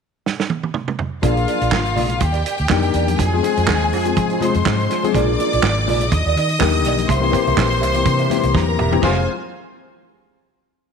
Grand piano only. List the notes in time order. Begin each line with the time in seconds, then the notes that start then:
1.22 F3 A#3 D4 G#4
2.70 D#3 A#3 D4 G4
3.33 F3 G#3 C4 G#4
3.43 F3 G#3 C4 G#4
4.05 F3 G#3 C4 G#4
4.40 F3 G#3 C4 G#4
5.03 F3 G#3 C4 G#4
5.14 F3 A#3 D4 G#4
6.59 D3 D#3 A#3 G4
7.20 E3 A#3 C4 G4
7.31 E3 A#3 C4 G4
7.95 E3 A#3 C4 G4
8.29 E3 A#3 C4 G4
8.91 E3 A#3 C4 G4
9.02 F3 G#3 C4 G#4